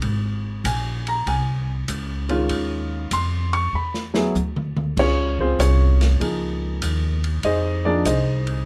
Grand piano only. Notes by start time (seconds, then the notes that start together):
0.66 G#5
1.08 A#5
1.28 G#5
2.29 D#3 G#3 C#4 F4
3.13 C6
3.53 C#6
3.75 B5
4.14 F#3 B3 E4 G#4
4.99 C#4 F4 G#4 C#5
5.40 C4 F4 G#4 C5
5.60 C#4 F4 G#4 C#5
6.20 F3 A#3 D#4 G#4
7.45 D#4 G#4 C5 D#5
7.85 F3 A#3 D4 D#4 G#4 D5
8.06 D#4 G#4 C5 D#5